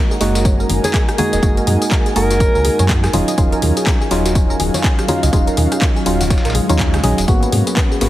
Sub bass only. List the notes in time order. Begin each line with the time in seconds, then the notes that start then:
0.21 F#1
0.69 F#1
1.33 D#1
1.43 F#1
1.67 F#2
2.16 F#1
2.55 C#2
2.79 F#2
3.13 D#1
3.38 D#1
3.62 D#2
4.11 D#1
4.60 D#1
5.23 C#2
5.33 D#1
5.57 D#2
6.06 D#1
6.45 A#1
6.69 D#2
6.94 C#2
7.04 A#1
7.18 D#1
7.28 G#1
7.52 G#2
8.01 G#1